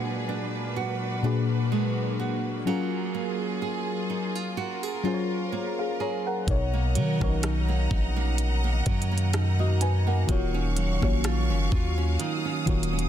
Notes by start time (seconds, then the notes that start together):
Already playing: A#2 F#3 G#3 A#3 D4 F#4 G#4 B4
0.29 D4
0.76 F#4
1.23 A#2 A#3 D4 F#4 G#4
1.27 B4
1.72 G#3
2.19 F#4
2.65 F#3 C#4 F4 G#4
2.69 A#4
3.15 A#3
3.62 G#4
4.10 D#4
4.35 F4
4.57 F#4 A#4
4.83 G#4
5.03 F#3 C#4 F4 G#4
5.08 C5
5.14 C#5
5.52 A#3
5.79 G#4 F5
6.00 G#4 C#5 A#5
6.27 A#4 F#5
6.47 B1 B2 B3 D#4 A#4 C#5 D#5 F#5 A#5, kick, closed hi-hat
6.73 A#3
6.95 D#3 F#3, closed hi-hat
7.20 B1 D#3 A#3 B3 C#4 A#4, kick, cross-stick
7.24 C#5
7.28 D#4
7.43 D#4, cross-stick, closed hi-hat
7.68 A#3
7.91 A#1 D#4, kick
8.16 A#3
8.38 closed hi-hat
8.64 A#3
8.86 F#2 F#3, kick, closed hi-hat
9.02 closed hi-hat
9.11 A#3
9.18 closed hi-hat
9.33 D#4, cross-stick, closed hi-hat
9.59 A#3 F#4 D#5
9.81 D#4 B4 G#5, closed hi-hat
10.07 A#3 A#4 F#5
10.27 D#1 D#3 F#3 A#3 F4 F#4 C#5 F5 C#6, kick, closed hi-hat
10.54 C#4
10.76 F#3, closed hi-hat
11.00 A#1 D#3 A#3 C#4 F4 F#4, kick, cross-stick
11.05 C#5
11.24 F4, cross-stick, closed hi-hat
11.50 F#1 C#4
11.72 D#2 F4, kick
11.98 C#4
12.19 D#3 D#6, closed hi-hat
12.45 C#4
12.66 D#1 D#3 F#3 A#3 F4 F#4 C#5, kick, closed hi-hat
12.83 closed hi-hat
12.93 C#4
12.99 closed hi-hat